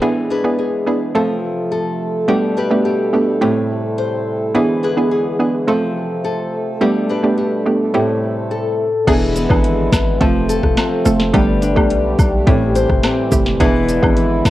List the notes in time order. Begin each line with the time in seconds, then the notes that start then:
Already playing: A3
0.02 E3 G#3 B3 D4 E4 G#4
0.30 D4 G#4 B4
0.44 B3 D4 E4 G#4
0.59 G#4
0.86 B3 D4 E4 G#4
1.15 C3 F3 A3 C4 F4 A4
1.72 A4
2.28 B2 G3 A3 B3 D4 G4
2.57 D4 G4 B4
2.70 A3 B3 D4 G4
2.85 G4
3.13 A3 B3 D4 G4
3.41 A2 C3 A3 C4 E4 G4
3.98 C5
4.55 D3 E3 G#3 B3 D4 E4 G#4
4.83 D4 G#4 B4
4.97 B3 D4 E4 G#4
5.11 G#4
5.39 B3 D4 E4 G#4
5.68 C3 F3 A3 C4 F4 A4
6.24 A4
6.81 B2 G3 A3 B3 D4 G4
7.09 D4 G4 B4
7.23 A3 B3 D4 G4
7.38 G4
7.66 A3 B3 D4 G4
7.94 A2 C3 A3 C4 E4 G4 A4
8.51 A4
9.07 E1 D3 E3 G#3 B3 D4 E4 G#4, kick, closed hi-hat, crash, high woodblock
9.36 B3, closed hi-hat, cabasa
9.50 G#1 B3 D4 E4 G#4, kick, high woodblock
9.64 closed hi-hat
9.92 G#1, kick, snare, closed hi-hat, cabasa, high woodblock
10.20 F1 C3 F3 A3 C4 F4 A4, kick, closed hi-hat
10.49 A4, closed hi-hat, cabasa
10.63 E1, kick, cross-stick
10.77 C4, snare, closed hi-hat, high woodblock
11.05 F1 A3 C4 F4 A4, closed hi-hat, cabasa
11.20 snare
11.34 G1 D3 G3 A3 B3 D4 G4 B4, kick, closed hi-hat, high woodblock
11.62 D4, closed hi-hat, cabasa
11.76 B1 A3 B3 D4 G4, kick, high woodblock
11.90 closed hi-hat
12.19 B1, kick, closed hi-hat, cabasa, high woodblock
12.47 A1 A2 E3 A3 C4 E4 G4, kick, closed hi-hat
12.75 C5, closed hi-hat, cabasa
12.90 F1, kick, cross-stick
13.03 C4, snare, closed hi-hat, high woodblock
13.32 F1 A3 C4 E4 G4, kick, closed hi-hat, cabasa
13.46 snare
13.60 E1 D3 E3 G#3 B3 D4 E4 G#4 B4, kick, closed hi-hat, high woodblock
13.89 D4, closed hi-hat, cabasa
14.02 G#1 B3 D4 E4 G#4, kick, high woodblock
14.17 closed hi-hat
14.45 G#1, kick, snare, closed hi-hat, cabasa, high woodblock